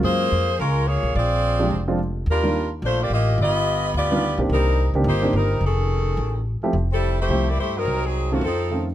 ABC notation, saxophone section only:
X:1
M:4/4
L:1/8
Q:"Swing" 1/4=215
K:Fmix
V:1 name="Saxophone section"
[B,F_Ac]4 [_A,_DFB]2 [B,FA_d]2 | [CF_Ad]4- [CFAd] z3 | [G,DFB]3 z [A,DFc] [B,FGd] [B,FGe]2 | [=B,FGe]4 [B,FGd]3 z |
[G,CEB]3 z [B,EGc]2 [G,CEB]2 | [E,^C^GA]6 z2 | [K:F] z [G,CEA]2 [A,EGc]2 [B,EGd] [A,EGc] [_G,C_EB]- | [_G,C_EB] [G,CE_A]2 [_E,B,C_G] [F,CE=A]3 z |]